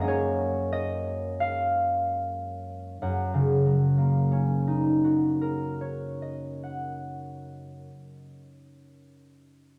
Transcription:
0.00 2.96 F#2 medium
0.00 2.99 G#3 soft
0.00 3.89 A#3 soft
0.00 3.93 C#4 soft
0.00 2.69 A#4 medium
0.00 0.13 D#5 medium
0.00 0.58 F#5 medium
0.08 3.98 C#5 medium
0.72 1.92 D#5 medium
1.40 3.06 F5 medium
3.02 7.85 F#2 soft
3.02 6.62 F#5 soft
3.34 8.17 C#3 soft
3.66 8.49 F#3 soft
3.98 8.81 A#3 soft
4.31 9.15 C#4 soft
4.67 9.23 D#4 soft
5.04 9.23 F#4 soft
5.41 9.23 A#4 soft
5.81 9.23 C#5 soft
6.22 9.23 D#5 soft
6.63 9.23 F#5 soft

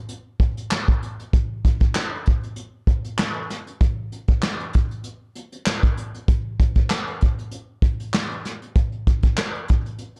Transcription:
0.09 closed hi-hat medium
0.40 kick loud
0.40 closed hi-hat medium
0.57 closed hi-hat medium
0.71 snare loud
0.71 clap medium
0.88 kick medium
1.02 closed hi-hat medium
1.20 closed hi-hat soft
1.33 kick loud
1.33 closed hi-hat medium
1.65 kick medium
1.65 closed hi-hat medium
1.80 kick medium
1.80 closed hi-hat medium
1.95 snare loud
1.95 clap medium
2.26 kick medium
2.26 closed hi-hat medium
2.43 closed hi-hat soft
2.56 closed hi-hat medium
2.87 kick loud
2.87 closed hi-hat medium
3.05 closed hi-hat medium
3.19 snare loud
3.19 clap medium
3.50 snare soft
3.50 closed hi-hat medium
3.67 closed hi-hat medium
3.81 kick loud
3.81 closed hi-hat medium
4.12 closed hi-hat medium
4.28 kick medium
4.28 closed hi-hat medium
4.43 snare loud
4.43 clap medium
4.60 closed hi-hat soft
4.73 kick medium
4.73 closed hi-hat medium
4.91 closed hi-hat medium
5.04 closed hi-hat medium
5.35 closed hi-hat medium
5.52 closed hi-hat medium
5.66 snare loud
5.66 clap medium
5.83 kick medium
5.83 closed hi-hat soft
5.97 closed hi-hat medium
6.14 closed hi-hat medium
6.28 kick loud
6.28 closed hi-hat medium
6.60 kick loud
6.60 closed hi-hat medium
6.75 kick medium
6.75 closed hi-hat medium
6.90 snare loud
6.90 clap medium
7.07 closed hi-hat soft
7.21 kick medium
7.21 closed hi-hat medium
7.39 closed hi-hat soft
7.51 closed hi-hat medium
7.82 kick medium
7.82 closed hi-hat medium
8.00 closed hi-hat medium
8.14 snare loud
8.14 clap medium
8.31 closed hi-hat soft
8.45 snare soft
8.45 closed hi-hat medium
8.62 closed hi-hat soft
8.76 kick loud
8.76 closed hi-hat medium
8.92 closed hi-hat soft
9.07 kick loud
9.07 closed hi-hat medium
9.23 kick medium
9.23 closed hi-hat medium
9.38 snare loud
9.38 clap medium
9.55 closed hi-hat soft
9.68 kick medium
9.68 closed hi-hat medium
9.86 closed hi-hat soft
9.99 closed hi-hat medium
10.16 closed hi-hat soft

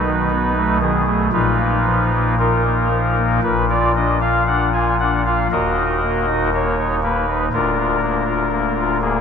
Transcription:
0.00 1.29 B1 medium
0.00 1.29 B2 medium
0.00 0.78 D#4 medium
0.00 0.77 B4 loud
0.06 0.28 D#3 medium
0.30 0.53 B3 medium
0.57 0.79 A3 medium
0.81 1.04 D#3 medium
0.81 1.25 G#4 medium
1.07 1.29 A3 medium
1.33 3.39 A#1 medium
1.33 3.39 A#2 medium
1.33 2.35 D#4 medium
1.33 2.35 F4 medium
1.33 2.35 B4 medium
1.60 1.83 A#3 soft
1.86 2.09 F3 medium
2.13 2.36 A#3 soft
2.39 3.40 D#4 medium
2.39 3.40 F4 medium
2.39 3.40 A#4 medium
2.65 2.88 A#3 soft
2.91 3.14 F3 soft
3.18 3.40 A#3 soft
3.43 5.47 A#1 medium
3.43 5.47 A#2 medium
3.43 3.65 B4 medium
3.70 3.93 F4 medium
3.70 3.92 D5 medium
3.95 4.19 D4 soft
3.95 4.17 D#5 medium
4.21 4.44 F4 soft
4.21 4.43 F5 medium
4.47 4.70 D4 soft
4.47 4.69 F#5 medium
4.73 4.97 F4 soft
4.73 4.96 G#5 medium
5.00 5.23 D4 soft
5.00 5.22 F#5 medium
5.26 5.48 F4 soft
5.26 5.48 F5 medium
5.51 7.48 D#1 medium
5.51 7.48 D#2 medium
5.51 6.50 F#4 medium
5.51 6.50 A#4 medium
5.51 6.50 D#5 medium
5.78 6.00 D#4 soft
6.03 6.25 A#3 medium
6.27 6.50 D#4 soft
6.53 6.75 A#3 medium
6.53 6.96 C#5 medium
6.78 7.00 D#4 soft
7.03 7.25 A#3 medium
7.03 7.45 B4 medium
7.28 7.49 D#4 soft
7.53 9.21 D1 medium
7.53 9.21 D2 medium
7.53 8.97 D4 medium
7.53 7.75 F4 medium
7.53 8.97 A#4 medium
7.77 7.99 F4 medium
8.02 8.24 A#3 medium
8.27 8.49 F4 soft
8.52 8.73 A#3 medium
8.77 8.98 F4 soft
9.02 9.21 A#3 soft
9.02 9.21 G#4 medium

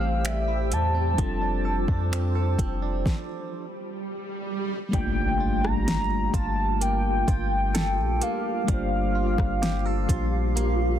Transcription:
0.00 0.73 A1 loud
0.00 1.28 A2 medium
0.00 1.15 E3 medium
0.00 0.23 G3 medium
0.00 1.12 G3 medium
0.00 1.13 A3 medium
0.00 1.14 C4 medium
0.00 0.94 C4 medium
0.00 1.15 G4 medium
0.00 1.17 A4 medium
0.00 1.14 C5 medium
0.00 0.28 F5 loud
0.00 1.16 G5 medium
0.00 1.15 E6 medium
0.25 0.70 G3 medium
0.25 0.74 E5 loud
0.25 finger snap loud
0.25 closed hi-hat medium
0.48 1.28 E4 medium
0.71 1.16 E2 loud
0.71 1.18 G3 medium
0.71 2.60 A5 loud
0.71 closed hi-hat medium
0.95 1.45 C4 medium
1.13 3.00 G3 medium
1.13 3.01 C4 medium
1.18 1.86 F1 loud
1.18 3.65 F3 medium
1.18 3.02 D4 medium
1.18 3.04 F4 medium
1.18 3.03 F4 medium
1.18 3.04 C5 medium
1.18 3.04 A5 medium
1.18 3.04 D6 medium
1.18 kick loud
1.18 closed hi-hat medium
1.18 swell medium
1.23 3.04 A4 medium
1.42 1.88 D4 medium
1.65 2.35 A4 medium
1.88 2.56 F2 loud
1.88 2.82 D4 medium
1.88 kick medium
2.12 2.57 C4 medium
2.12 finger snap loud
2.12 closed hi-hat medium
2.35 3.65 A4 medium
2.59 3.04 F1 loud
2.59 3.15 C4 medium
2.59 kick medium
2.59 closed hi-hat medium
2.82 3.65 D4 medium
3.06 kick loud
3.06 snare medium
4.89 8.62 G3 medium
4.89 8.63 A#3 medium
4.93 6.30 G1 loud
4.93 8.67 G3 medium
4.93 8.64 D4 medium
4.93 10.99 F4 medium
4.93 8.66 F4 medium
4.93 10.99 G4 medium
4.93 8.65 G5 medium
4.93 5.66 G5 loud
4.93 kick loud
4.93 closed hi-hat medium
4.93 impact medium
4.98 8.67 A3 medium
5.40 6.34 F4 medium
5.64 6.36 A#5 loud
5.64 cross-stick medium
5.88 snare loud
5.88 closed hi-hat medium
6.34 7.24 G1 loud
6.34 7.27 F4 medium
6.34 6.83 A5 loud
6.34 kick medium
6.34 closed hi-hat medium
6.81 8.21 A#3 medium
6.81 8.24 G5 loud
6.81 closed hi-hat medium
7.28 8.00 G1 loud
7.28 9.15 F4 medium
7.28 kick medium
7.28 closed hi-hat medium
7.74 9.62 A4 medium
7.74 snare loud
7.74 closed hi-hat medium
7.99 8.21 A#1 loud
8.21 10.55 A#3 medium
8.21 10.99 F5 loud
8.21 closed hi-hat medium
8.64 10.99 G3 medium
8.64 10.99 A#3 medium
8.68 9.36 G1 loud
8.68 10.99 G3 medium
8.68 10.99 D4 medium
8.68 10.99 F4 medium
8.68 10.99 F5 medium
8.68 kick loud
8.68 closed hi-hat medium
8.74 10.99 C5 medium
9.15 10.09 F4 medium
9.38 10.06 G1 loud
9.38 kick loud
9.38 cross-stick medium
9.62 9.85 G4 medium
9.62 snare loud
9.62 closed hi-hat medium
9.85 10.99 A4 medium
10.09 10.99 A#1 loud
10.09 10.99 F4 medium
10.09 kick medium
10.09 closed hi-hat medium
10.56 10.99 A#3 medium
10.56 closed hi-hat medium

